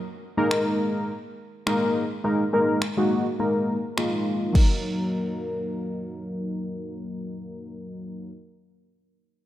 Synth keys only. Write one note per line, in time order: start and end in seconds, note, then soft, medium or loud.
0.37 1.11 G#3 medium
0.37 1.11 A#3 medium
0.37 1.11 D#4 medium
0.37 1.12 A#4 loud
1.67 2.04 G#3 medium
1.67 2.04 A#3 medium
1.67 2.05 D#4 medium
1.67 2.05 A#4 loud
2.24 2.44 G#3 medium
2.24 2.44 A#3 medium
2.24 2.44 D#4 medium
2.24 2.44 A#4 medium
2.53 2.81 G#3 medium
2.53 2.81 A#3 medium
2.53 2.81 D#4 medium
2.53 2.81 A#4 loud
2.97 3.25 G#3 medium
2.97 3.25 A#3 medium
2.97 3.25 D#4 medium
2.97 3.25 F#4 medium
3.39 3.77 G#3 medium
3.39 3.77 A#3 medium
3.39 3.77 D#4 medium
3.39 3.78 A#4 medium
3.97 4.55 G#3 medium
3.97 4.53 A#3 medium
3.97 4.55 D#4 medium
3.97 4.55 F4 medium
4.53 8.31 F#3 medium
4.53 8.32 A#3 medium
4.53 8.32 D#4 medium
4.53 8.33 A#4 medium